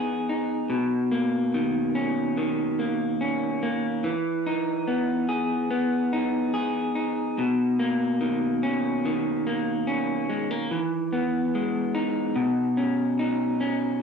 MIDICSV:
0, 0, Header, 1, 2, 480
1, 0, Start_track
1, 0, Key_signature, 5, "major"
1, 0, Tempo, 832178
1, 409, Time_signature, 4, 2, 24, 8
1, 8087, End_track
2, 0, Start_track
2, 0, Title_t, "Clean electric guitar"
2, 0, Program_c, 0, 27
2, 0, Note_on_c, 0, 52, 77
2, 0, Note_on_c, 0, 59, 67
2, 0, Note_on_c, 0, 63, 54
2, 0, Note_on_c, 0, 68, 57
2, 168, Note_off_c, 0, 63, 0
2, 170, Note_on_c, 0, 63, 57
2, 402, Note_on_c, 0, 47, 75
2, 405, Note_off_c, 0, 52, 0
2, 457, Note_off_c, 0, 68, 0
2, 641, Note_off_c, 0, 59, 0
2, 643, Note_on_c, 0, 58, 57
2, 890, Note_on_c, 0, 51, 57
2, 1123, Note_off_c, 0, 63, 0
2, 1125, Note_on_c, 0, 61, 60
2, 1367, Note_off_c, 0, 51, 0
2, 1369, Note_on_c, 0, 51, 68
2, 1603, Note_off_c, 0, 58, 0
2, 1610, Note_on_c, 0, 58, 53
2, 1844, Note_off_c, 0, 61, 0
2, 1851, Note_on_c, 0, 61, 60
2, 2085, Note_off_c, 0, 58, 0
2, 2092, Note_on_c, 0, 58, 56
2, 2328, Note_off_c, 0, 51, 0
2, 2330, Note_on_c, 0, 52, 77
2, 2331, Note_off_c, 0, 47, 0
2, 2381, Note_off_c, 0, 58, 0
2, 2381, Note_off_c, 0, 61, 0
2, 2575, Note_on_c, 0, 63, 58
2, 2812, Note_on_c, 0, 59, 56
2, 3049, Note_on_c, 0, 68, 60
2, 3289, Note_off_c, 0, 59, 0
2, 3291, Note_on_c, 0, 59, 71
2, 3533, Note_off_c, 0, 63, 0
2, 3535, Note_on_c, 0, 63, 56
2, 3764, Note_off_c, 0, 68, 0
2, 3771, Note_on_c, 0, 68, 61
2, 4008, Note_off_c, 0, 63, 0
2, 4010, Note_on_c, 0, 63, 54
2, 4254, Note_off_c, 0, 52, 0
2, 4259, Note_on_c, 0, 47, 82
2, 4302, Note_off_c, 0, 68, 0
2, 4493, Note_off_c, 0, 59, 0
2, 4496, Note_on_c, 0, 58, 60
2, 4734, Note_on_c, 0, 51, 53
2, 4976, Note_off_c, 0, 63, 0
2, 4978, Note_on_c, 0, 61, 63
2, 5220, Note_off_c, 0, 51, 0
2, 5223, Note_on_c, 0, 51, 66
2, 5454, Note_off_c, 0, 58, 0
2, 5461, Note_on_c, 0, 58, 56
2, 5688, Note_off_c, 0, 61, 0
2, 5695, Note_on_c, 0, 61, 62
2, 5936, Note_off_c, 0, 58, 0
2, 5938, Note_on_c, 0, 56, 53
2, 6061, Note_off_c, 0, 56, 0
2, 6061, Note_on_c, 0, 58, 48
2, 6177, Note_off_c, 0, 47, 0
2, 6179, Note_on_c, 0, 52, 73
2, 6223, Note_off_c, 0, 61, 0
2, 6226, Note_off_c, 0, 58, 0
2, 6417, Note_on_c, 0, 59, 58
2, 6659, Note_off_c, 0, 51, 0
2, 6661, Note_on_c, 0, 56, 55
2, 6891, Note_on_c, 0, 63, 63
2, 7127, Note_on_c, 0, 47, 81
2, 7184, Note_off_c, 0, 52, 0
2, 7185, Note_off_c, 0, 56, 0
2, 7365, Note_off_c, 0, 59, 0
2, 7368, Note_on_c, 0, 61, 57
2, 7385, Note_off_c, 0, 63, 0
2, 7609, Note_on_c, 0, 63, 61
2, 7845, Note_off_c, 0, 61, 0
2, 7848, Note_on_c, 0, 61, 54
2, 8076, Note_off_c, 0, 47, 0
2, 8086, Note_off_c, 0, 63, 0
2, 8087, Note_off_c, 0, 61, 0
2, 8087, End_track
0, 0, End_of_file